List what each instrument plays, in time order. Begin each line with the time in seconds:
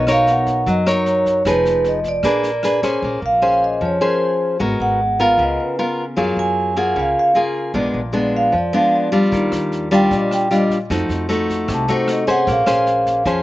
Already playing: upright bass B1, nylon-string guitar B3
0.07 nylon-string guitar D#4 A#4 C#5, cross-stick, snare
0.12 vibraphone F5
0.27 vibraphone F#5, snare
0.47 kick, snare
0.67 upright bass F#2, nylon-string guitar F#3, vibraphone D#5, kick, snare
0.86 nylon-string guitar D#4 A#4 C#5, vibraphone C#5, cross-stick, snare
1.06 snare
1.26 kick, snare
1.45 upright bass F1, nylon-string guitar F3 D#4 G#4 B4, vibraphone B4, kick, cross-stick, snare
1.65 snare
1.84 vibraphone D#5, snare
2.04 kick, snare
2.08 vibraphone D5
2.23 upright bass A#1, nylon-string guitar A#3 D4 G#4 B4, kick, cross-stick, snare
2.43 snare
2.63 nylon-string guitar D4 G#4 B4, cross-stick, snare
2.82 nylon-string guitar C#4 G#4 C5, kick, snare
3.02 upright bass A#1, nylon-string guitar A#3
3.22 upright bass A#1, vibraphone F5
3.42 nylon-string guitar C#4 G#4 C5
3.64 vibraphone D#5
3.81 upright bass F2, nylon-string guitar F3
3.85 vibraphone C#5
4.01 nylon-string guitar C#4 G#4 C5, vibraphone A#4
4.60 upright bass G#1, nylon-string guitar G#3 B3 F#4 A#4
4.80 upright bass G#1, vibraphone F#5
5.19 nylon-string guitar B3 F4 A#4, vibraphone F5
5.38 upright bass C#2, nylon-string guitar C#3
5.43 vibraphone D#5
5.60 vibraphone B4
5.79 nylon-string guitar B3 F4 A#4
6.17 upright bass F#2, nylon-string guitar F#3 A#3 F4 G#4
6.37 upright bass F#2, vibraphone G#5
6.76 nylon-string guitar A#3 F4 G#4, vibraphone F#5
6.95 upright bass C#2, nylon-string guitar C#3
7.00 vibraphone F5
7.19 vibraphone F5
7.35 nylon-string guitar A#3 F4 G#4
7.74 upright bass A#1, nylon-string guitar A#2 G#3 B3 D4
7.94 upright bass A#1
8.13 nylon-string guitar G#3 B3 D4
8.37 vibraphone F5
8.52 upright bass F2, nylon-string guitar F3
8.58 vibraphone D5
8.73 nylon-string guitar G#3 B3 D4, vibraphone F5
8.96 vibraphone D5
9.12 nylon-string guitar G3 D4 F4
9.32 upright bass D#2, nylon-string guitar D#3, kick, snare
9.52 upright bass D#2, cross-stick, snare
9.72 snare
9.91 nylon-string guitar G3 D4 F4, vibraphone G5, kick, snare
10.11 upright bass A#1, nylon-string guitar A#2, kick, snare
10.16 vibraphone D#5
10.31 vibraphone G5, cross-stick, snare
10.51 nylon-string guitar G3 D4 F4, vibraphone D#5, snare
10.70 kick, snare
10.90 upright bass F2, nylon-string guitar F3 A3 D#4 F#4, kick, cross-stick, snare
11.09 upright bass F2, snare
11.29 nylon-string guitar A3 D#4 F#4, snare
11.49 kick, snare
11.68 upright bass C2, nylon-string guitar C3, kick, cross-stick, snare
11.74 vibraphone A5
11.88 nylon-string guitar A3 D#4 F#4, vibraphone C5, snare
12.08 cross-stick, snare
12.12 vibraphone D#5
12.27 nylon-string guitar C#4 G#4 C5, vibraphone F#5, kick, snare
12.47 upright bass A#1, nylon-string guitar A#3, kick, snare
12.51 vibraphone F5
12.66 upright bass A#1, nylon-string guitar C#4 G#4 C5, cross-stick, snare
12.87 snare
13.06 kick, snare
13.26 upright bass F2, nylon-string guitar F3 C#4 G#4 C5, kick, snare